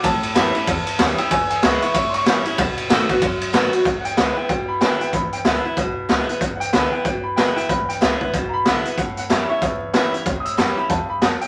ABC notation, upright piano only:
X:1
M:4/4
L:1/8
Q:"Swing" 1/4=188
K:A
V:1 name="Upright piano"
a6 z [=g^d'e'] | [ge'] [ge'] [ec'] [ec'] [ec'] [=c'^c']3- | [=c'^c'] z6 z | z [f=g] b g g b g [fg] |
b =g e z4 z | z [f=g] b g g b g [fg] | b =g e z2 [^ab]3 | f f e [ce]4 z |
z [^d'e']2 b a b a =g |]